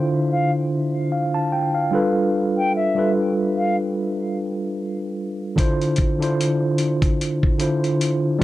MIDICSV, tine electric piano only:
0, 0, Header, 1, 2, 480
1, 0, Start_track
1, 0, Tempo, 810811
1, 1381, Time_signature, 4, 2, 24, 8
1, 4995, End_track
2, 0, Start_track
2, 0, Title_t, "Tine electric piano"
2, 0, Program_c, 0, 4
2, 0, Control_c, 0, 64, 127
2, 0, Note_on_c, 0, 50, 75
2, 0, Note_on_c, 0, 62, 59
2, 0, Note_on_c, 0, 64, 60
2, 0, Note_on_c, 0, 65, 64
2, 0, Note_on_c, 0, 72, 75
2, 548, Note_off_c, 0, 50, 0
2, 551, Note_off_c, 0, 62, 0
2, 554, Note_off_c, 0, 64, 0
2, 557, Note_off_c, 0, 65, 0
2, 560, Note_off_c, 0, 72, 0
2, 663, Note_on_c, 0, 77, 59
2, 788, Note_off_c, 0, 77, 0
2, 795, Note_on_c, 0, 81, 68
2, 896, Note_off_c, 0, 81, 0
2, 901, Note_on_c, 0, 79, 63
2, 1028, Note_off_c, 0, 79, 0
2, 1033, Note_on_c, 0, 77, 61
2, 1130, Note_on_c, 0, 55, 78
2, 1137, Note_on_c, 0, 62, 76
2, 1142, Note_on_c, 0, 65, 80
2, 1148, Note_on_c, 0, 69, 81
2, 1149, Control_c, 0, 64, 0
2, 1154, Note_on_c, 0, 71, 91
2, 1239, Control_c, 0, 64, 127
2, 1261, Note_off_c, 0, 77, 0
2, 1652, Note_off_c, 0, 55, 0
2, 1656, Note_off_c, 0, 62, 0
2, 1658, Note_off_c, 0, 65, 0
2, 1662, Note_off_c, 0, 69, 0
2, 1664, Note_off_c, 0, 71, 0
2, 1745, Note_on_c, 0, 55, 72
2, 1750, Note_on_c, 0, 62, 60
2, 1757, Note_on_c, 0, 65, 59
2, 1763, Note_on_c, 0, 69, 63
2, 1769, Note_on_c, 0, 71, 77
2, 2560, Note_off_c, 0, 55, 0
2, 2562, Note_off_c, 0, 62, 0
2, 2566, Note_off_c, 0, 65, 0
2, 2569, Note_off_c, 0, 69, 0
2, 2572, Note_off_c, 0, 71, 0
2, 3290, Note_on_c, 0, 50, 95
2, 3296, Note_on_c, 0, 62, 96
2, 3302, Note_on_c, 0, 64, 87
2, 3309, Control_c, 0, 64, 0
2, 3309, Note_on_c, 0, 65, 85
2, 3313, Note_on_c, 0, 72, 118
2, 3428, Control_c, 0, 64, 127
2, 3611, Note_off_c, 0, 50, 0
2, 3614, Note_off_c, 0, 62, 0
2, 3617, Note_off_c, 0, 64, 0
2, 3620, Note_off_c, 0, 65, 0
2, 3622, Note_off_c, 0, 72, 0
2, 3666, Note_on_c, 0, 50, 84
2, 3673, Note_on_c, 0, 62, 78
2, 3679, Note_on_c, 0, 64, 77
2, 3685, Note_on_c, 0, 65, 78
2, 3691, Note_on_c, 0, 72, 87
2, 4389, Note_off_c, 0, 50, 0
2, 4392, Note_off_c, 0, 62, 0
2, 4395, Note_off_c, 0, 64, 0
2, 4398, Note_off_c, 0, 65, 0
2, 4401, Note_off_c, 0, 72, 0
2, 4486, Note_on_c, 0, 50, 77
2, 4492, Note_on_c, 0, 62, 72
2, 4499, Note_on_c, 0, 64, 78
2, 4504, Note_on_c, 0, 65, 81
2, 4509, Note_on_c, 0, 72, 93
2, 4963, Note_off_c, 0, 62, 0
2, 4965, Note_on_c, 0, 55, 94
2, 4968, Note_off_c, 0, 65, 0
2, 4970, Note_on_c, 0, 62, 78
2, 4974, Note_off_c, 0, 50, 0
2, 4975, Note_on_c, 0, 65, 79
2, 4980, Note_off_c, 0, 64, 0
2, 4985, Note_off_c, 0, 72, 0
2, 4989, Control_c, 0, 64, 0
2, 4995, Note_off_c, 0, 55, 0
2, 4995, Note_off_c, 0, 62, 0
2, 4995, Note_off_c, 0, 65, 0
2, 4995, End_track
0, 0, End_of_file